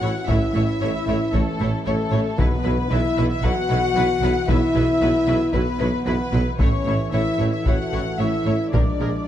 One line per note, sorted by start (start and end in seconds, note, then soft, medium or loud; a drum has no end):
0.00 0.09 A1 medium
0.00 0.13 A1 soft
0.00 0.09 A2 soft
0.00 2.22 E3 soft
0.00 0.10 A3 soft
0.00 2.22 C#4 soft
0.00 0.11 E4 soft
0.00 0.28 F#4 medium
0.00 0.09 C#5 soft
0.00 0.28 F#5 medium
0.26 0.36 A1 medium
0.26 0.40 A1 medium
0.26 0.35 A2 medium
0.26 0.37 A3 medium
0.26 0.37 E4 medium
0.26 1.34 E4 medium
0.26 0.36 C#5 soft
0.26 1.33 E5 medium
0.26 taiko medium
0.53 0.62 A1 medium
0.53 0.67 A1 medium
0.53 0.61 A2 medium
0.53 0.63 A3 soft
0.53 0.62 E4 soft
0.53 0.63 C#5 soft
0.80 0.89 A1 medium
0.80 0.92 A1 medium
0.80 0.88 A2 medium
0.80 0.90 A3 medium
0.80 0.90 E4 medium
0.80 0.89 C#5 soft
1.07 1.15 A1 medium
1.07 1.19 A1 medium
1.07 1.15 A2 medium
1.07 1.15 A3 medium
1.07 1.15 E4 medium
1.07 1.16 C#5 soft
1.33 1.42 A1 medium
1.33 1.45 A1 medium
1.33 1.41 A2 medium
1.33 1.42 A3 soft
1.33 1.87 A3 medium
1.33 1.42 E4 medium
1.33 1.84 A4 medium
1.33 1.42 C#5 soft
1.33 taiko medium
1.59 1.68 A1 medium
1.59 1.71 A1 medium
1.59 1.67 A2 medium
1.59 1.68 A3 soft
1.59 1.68 E4 soft
1.59 1.69 C#5 soft
1.85 1.95 A1 medium
1.85 1.97 A1 medium
1.85 1.94 A2 medium
1.85 1.94 A3 soft
1.85 2.39 A3 medium
1.85 1.93 E4 soft
1.85 2.37 A4 medium
1.85 1.95 C#5 medium
2.12 2.21 A1 medium
2.12 2.24 A1 medium
2.12 2.21 A2 medium
2.12 2.20 A3 soft
2.12 2.20 E4 medium
2.12 2.20 C#5 medium
2.38 2.46 B1 medium
2.38 2.50 B1 medium
2.38 3.13 B2 medium
2.38 2.47 B2 medium
2.38 6.56 E3 medium
2.38 2.46 F#3 medium
2.38 2.91 B3 medium
2.38 6.56 B3 medium
2.38 2.47 E4 medium
2.38 2.47 B4 medium
2.38 2.92 B4 medium
2.38 taiko medium
2.64 2.75 B1 medium
2.64 2.73 B1 medium
2.64 2.73 B2 medium
2.64 2.72 F#3 medium
2.64 2.72 E4 medium
2.64 2.72 B4 medium
2.90 2.99 B1 medium
2.90 3.02 B1 medium
2.90 2.99 B2 medium
2.90 2.99 F#3 medium
2.90 3.29 E4 medium
2.90 2.99 E4 medium
2.90 2.99 B4 medium
2.90 3.29 E5 medium
3.17 3.25 B1 medium
3.17 3.28 B1 medium
3.17 3.26 B2 medium
3.17 3.25 F#3 medium
3.17 3.25 E4 medium
3.17 3.26 B4 medium
3.30 3.43 E4 medium
3.30 3.43 E5 medium
3.43 3.51 B1 medium
3.43 3.54 B1 medium
3.43 3.52 B2 medium
3.43 3.51 F#3 medium
3.43 3.52 E4 medium
3.43 4.49 F#4 loud
3.43 3.51 B4 medium
3.43 4.49 F#5 medium
3.43 taiko medium
3.70 3.78 B1 medium
3.70 3.81 B1 medium
3.70 3.78 B2 medium
3.70 3.78 F#3 medium
3.70 3.78 E4 medium
3.70 3.78 B4 soft
3.96 4.04 B1 medium
3.96 4.07 B1 medium
3.96 4.04 B2 medium
3.96 4.04 F#3 medium
3.96 4.04 E4 medium
3.96 4.05 B4 medium
4.22 4.30 B1 medium
4.22 4.33 B1 medium
4.22 4.30 B2 medium
4.22 4.30 F#3 medium
4.22 4.30 E4 medium
4.22 4.31 B4 medium
4.48 4.57 B1 medium
4.48 4.60 B1 medium
4.48 4.56 B2 medium
4.48 4.57 F#3 medium
4.48 4.57 E4 medium
4.48 5.55 E4 loud
4.48 4.57 B4 medium
4.48 5.54 E5 medium
4.48 taiko medium
4.74 4.83 B1 medium
4.74 4.86 B1 medium
4.74 4.83 B2 medium
4.74 4.82 F#3 medium
4.74 4.82 E4 medium
4.74 4.84 B4 soft
5.01 5.09 B1 medium
5.01 5.12 B1 medium
5.01 5.09 B2 medium
5.01 5.09 F#3 medium
5.01 5.10 E4 medium
5.01 5.10 B4 medium
5.27 5.35 B1 medium
5.27 5.38 B1 medium
5.27 5.36 B2 medium
5.27 5.36 F#3 medium
5.27 5.36 E4 medium
5.27 5.35 B4 medium
5.53 5.64 B1 medium
5.53 5.62 B1 medium
5.53 5.62 B2 medium
5.53 5.62 F#3 medium
5.53 6.06 B3 medium
5.53 5.62 E4 medium
5.53 5.61 B4 medium
5.53 6.06 B4 medium
5.53 taiko medium
5.80 5.91 B1 medium
5.80 5.89 B1 medium
5.80 5.88 B2 medium
5.80 5.88 F#3 medium
5.80 5.88 E4 medium
5.80 5.88 B4 medium
6.05 6.17 B1 medium
6.05 6.15 B1 medium
6.05 6.14 B2 medium
6.05 6.13 F#3 medium
6.05 6.45 B3 medium
6.05 6.14 E4 medium
6.05 6.15 B4 medium
6.05 6.59 B4 medium
6.32 6.43 B1 medium
6.32 6.42 B1 medium
6.32 6.40 B2 medium
6.32 6.40 F#3 medium
6.32 6.40 E4 medium
6.32 6.42 B4 medium
6.59 6.70 A1 medium
6.59 6.68 A1 medium
6.59 6.67 A2 medium
6.59 8.69 E3 medium
6.59 8.73 A3 medium
6.59 6.67 A3 medium
6.59 7.12 C#4 medium
6.59 6.67 E4 medium
6.59 7.12 C#5 medium
6.59 6.68 C#5 medium
6.59 taiko medium
6.86 6.97 A1 medium
6.86 6.95 A1 medium
6.86 6.94 A2 medium
6.86 6.94 A3 medium
6.86 6.95 E4 medium
6.86 6.95 C#5 soft
7.12 7.23 A1 medium
7.12 7.22 A1 medium
7.12 7.20 A2 medium
7.12 7.20 A3 medium
7.12 7.20 E4 medium
7.12 7.53 E4 medium
7.12 7.21 C#5 medium
7.12 7.51 E5 medium
7.38 7.49 A1 medium
7.38 7.47 A1 soft
7.38 7.47 A2 soft
7.38 7.48 A3 soft
7.38 7.47 E4 soft
7.38 7.47 C#5 soft
7.52 7.67 E4 medium
7.52 7.65 E5 medium
7.65 7.76 A1 medium
7.65 7.74 A1 medium
7.65 7.73 A2 medium
7.65 7.73 A3 medium
7.65 7.74 E4 medium
7.65 8.19 F#4 medium
7.65 7.75 C#5 soft
7.65 8.19 F#5 medium
7.65 taiko medium
7.92 8.03 A1 medium
7.92 8.01 A1 soft
7.92 8.01 A2 soft
7.92 8.00 A3 soft
7.92 8.00 E4 soft
7.92 8.01 C#5 soft
8.18 8.29 A1 soft
8.18 8.28 A1 medium
8.18 8.27 A2 soft
8.18 8.27 A3 soft
8.18 8.26 E4 soft
8.18 8.74 E4 medium
8.18 8.28 C#5 soft
8.18 8.74 E5 medium
8.45 8.54 A1 soft
8.45 8.57 A1 soft
8.45 8.54 A2 soft
8.45 8.53 A3 soft
8.45 8.53 E4 soft
8.45 8.54 C#5 soft
8.71 8.84 A#1 medium
8.71 8.82 A#1 medium
8.71 8.81 A#2 medium
8.71 8.81 F3 soft
8.71 9.28 F3 soft
8.71 9.28 G#3 medium
8.71 9.28 D4 medium
8.71 8.81 G#4 soft
8.71 8.82 A#4 soft
8.71 9.28 D5 medium
8.71 taiko medium
9.00 9.12 A#1 soft
9.00 9.09 A#1 soft
9.00 9.08 A#2 soft
9.00 9.08 F3 soft
9.00 9.08 G#4 soft
9.00 9.08 A#4 soft